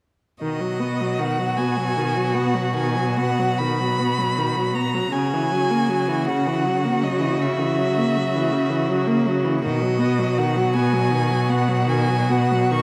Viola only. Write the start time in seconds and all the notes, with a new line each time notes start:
0.42 D#3
0.61 F#3
0.80 B3
1.01 F#3
1.19 D#3
1.39 F#3
1.58 B3
1.77 F#3
1.97 D#3
2.16 F#3
2.35 B3
2.55 F#3
2.75 D#3
2.96 F#3
3.18 B3
3.39 F#3
3.60 D#3
3.80 F#3
3.99 B3
4.19 F#3
4.38 D#3
4.56 F#3
4.74 B3
4.94 F#3
5.12 C#3
5.34 E3
5.52 F#3
5.71 A#3
5.89 F#3
6.08 E3
6.28 C#3
6.47 E3
6.65 F#3
6.85 A#3
7.03 F#3
7.21 E3
7.40 C#3
7.59 E3
7.78 F#3
7.98 A#3
8.17 F#3
8.36 E3
8.52 C#3
8.70 E3
8.89 F#3
9.08 A#3
9.27 F#3
9.44 E3
9.63 D#3
9.82 F#3
9.99 B3
10.19 F#3
10.38 D#3
10.57 F#3
10.75 B3
10.93 F#3
11.11 D#3
11.31 F#3
11.49 B3
11.68 F#3
11.88 D#3
12.09 F#3
12.29 B3
12.52 F#3
12.72 D#3